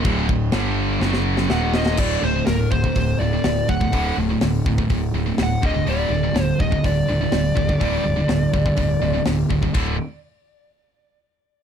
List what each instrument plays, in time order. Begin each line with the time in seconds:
0.04 picked electric bass D1, distorted electric guitar D2 A2 D3, kick, crash
0.29 picked electric bass D1, distorted electric guitar D2 A2, kick
0.52 picked electric bass G1, distorted electric guitar G2 D3 G3, snare, crash
1.01 picked electric bass F#1, distorted electric guitar F#2 C#3 F#3, snare
1.13 snare
1.37 snare
1.50 picked electric bass D#1, distorted electric guitar D#2 A#2 D#3, lead electric guitar F#5, snare
1.74 lead electric guitar D#5, snare
1.86 snare
1.97 picked electric bass D1, distorted electric guitar D2 A2 D3, lead electric guitar D5, kick, crash
2.23 picked electric bass D1, distorted electric guitar D2 A2, lead electric guitar C5
2.35 distorted electric guitar D2 A2
2.46 picked electric bass D1, distorted electric guitar D2 A2, lead electric guitar A#4, snare, open hi-hat
2.71 picked electric bass D1, distorted electric guitar D2 A2, lead electric guitar C5, kick
2.84 distorted electric guitar D2 A2, kick
2.95 picked electric bass D1, distorted electric guitar D2 A2, kick, open hi-hat
3.19 picked electric bass D1, distorted electric guitar D2 A2, lead electric guitar D5
3.33 distorted electric guitar D2 A2
3.44 picked electric bass D1, distorted electric guitar D2 A2, snare, open hi-hat
3.69 picked electric bass D1, distorted electric guitar D2 A2, lead electric guitar F#5, kick
3.80 distorted electric guitar D2 A2, kick
3.92 picked electric bass D1, distorted electric guitar D2 A2 D3, kick, open hi-hat
4.17 picked electric bass D1, distorted electric guitar D2 A2
4.29 distorted electric guitar D2 A2
4.41 picked electric bass D1, distorted electric guitar D2 A2, snare, open hi-hat
4.66 picked electric bass D1, distorted electric guitar D2 A2, kick
4.78 distorted electric guitar D2 A2, kick
4.90 picked electric bass D1, distorted electric guitar D2 A2, kick, open hi-hat
5.13 picked electric bass D1, distorted electric guitar D2 A2
5.26 distorted electric guitar D2 A2
5.38 picked electric bass D1, distorted electric guitar D2 A2, snare, open hi-hat
5.43 lead electric guitar F#5
5.62 picked electric bass D1, distorted electric guitar G2 D3 G3, lead electric guitar D#5, kick
5.74 distorted electric guitar G2 D3
5.86 picked electric bass D1, distorted electric guitar G2 D3 G3, lead electric guitar D5, open hi-hat
6.10 picked electric bass D1, distorted electric guitar G2 D3
6.23 distorted electric guitar G2 D3
6.34 picked electric bass D1, distorted electric guitar G2 D3, snare, open hi-hat
6.44 lead electric guitar C5
6.60 picked electric bass D1, distorted electric guitar G2 D3, lead electric guitar D#5, kick
6.72 distorted electric guitar G2 D3, kick
6.84 picked electric bass D1, distorted electric guitar G2 D3, lead electric guitar D5, kick, open hi-hat
7.08 picked electric bass D1, distorted electric guitar G2 D3
7.21 distorted electric guitar G2 D3
7.32 picked electric bass D1, distorted electric guitar G2 D3, snare, open hi-hat
7.55 picked electric bass D1, distorted electric guitar G2 D3, kick
7.69 distorted electric guitar G2 D3, kick
7.80 picked electric bass D1, distorted electric guitar G2 D3 G3, kick, open hi-hat
8.04 picked electric bass D1, distorted electric guitar G2 D3
8.16 distorted electric guitar G2 D3
8.28 picked electric bass D1, distorted electric guitar G2 D3, snare, open hi-hat
8.53 picked electric bass D1, distorted electric guitar G2 D3, kick
8.66 distorted electric guitar G2 D3, kick
8.77 picked electric bass D1, distorted electric guitar G2 D3, kick, open hi-hat
9.01 picked electric bass D1, distorted electric guitar G2 D3
9.13 distorted electric guitar G2 D3
9.25 picked electric bass D1, distorted electric guitar G2 D3, snare, open hi-hat
9.50 picked electric bass D1, distorted electric guitar G2 D3, kick
9.62 distorted electric guitar G2 D3, kick
9.74 picked electric bass D1, distorted electric guitar D2 A2 D3, kick, crash